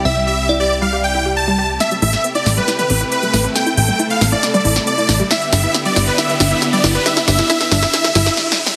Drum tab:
HH |------------------------------------------------|x--x--o--x--x--x--o--x--x--x--o--x--x--x--o--x--|x--x--o--x--x--x--o--x--x--x--o--x--x--x--o--x--|x--x--o--x--x--x--o--x--x--x--o--x--x--x--o--x--|
SD |------------------------------------------------|o--------o--------o-----o-----------------o-----|o-----------------o-----o--------o--------o-----|o-----o-----o-----o-----o-----o-----o-----o-----|
T2 |------------------------------------------------|---------------------------o-----------------o--|---------------------o-----o--------------------|---------------------------o-----------------o--|

HH |x--x--o--x--x--x--o--x--x--x--o--x--------------|
SD |o--o--o--o--o--o--o--o--o--o--o--o--o---o---o---|
T2 |---------------------o-----o--------------------|